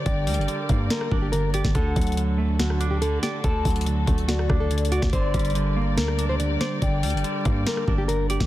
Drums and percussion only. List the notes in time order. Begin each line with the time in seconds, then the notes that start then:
0.06 kick, closed hi-hat
0.27 closed hi-hat, open hi-hat
0.34 closed hi-hat
0.41 closed hi-hat
0.48 closed hi-hat
0.69 kick, closed hi-hat
0.90 snare, closed hi-hat
1.01 cross-stick
1.12 kick
1.33 closed hi-hat
1.54 closed hi-hat
1.64 kick, snare
1.75 kick, closed hi-hat
1.96 kick, closed hi-hat
2.01 closed hi-hat
2.07 closed hi-hat
2.12 closed hi-hat
2.17 closed hi-hat
2.60 snare, closed hi-hat
2.70 cross-stick
2.81 closed hi-hat
3.02 closed hi-hat
3.23 snare, closed hi-hat
3.44 kick, closed hi-hat
3.65 kick, closed hi-hat, open hi-hat
3.70 closed hi-hat
3.76 closed hi-hat
3.81 closed hi-hat
3.86 closed hi-hat
4.07 kick, closed hi-hat
4.18 closed hi-hat
4.29 snare, closed hi-hat
4.39 cross-stick
4.50 kick, cross-stick
4.71 closed hi-hat
4.78 closed hi-hat
4.85 closed hi-hat
4.92 closed hi-hat
5.02 kick, snare
5.13 kick, closed hi-hat
5.34 kick, closed hi-hat
5.39 closed hi-hat
5.45 closed hi-hat
5.50 closed hi-hat
5.55 closed hi-hat
5.98 snare, closed hi-hat
6.08 cross-stick
6.19 closed hi-hat
6.40 closed hi-hat
6.61 snare, closed hi-hat
6.82 kick, closed hi-hat
7.03 closed hi-hat, open hi-hat
7.10 closed hi-hat
7.17 closed hi-hat
7.24 closed hi-hat
7.45 kick, closed hi-hat
7.66 snare, closed hi-hat
7.77 cross-stick
7.88 kick
8.09 closed hi-hat
8.30 closed hi-hat
8.40 kick, snare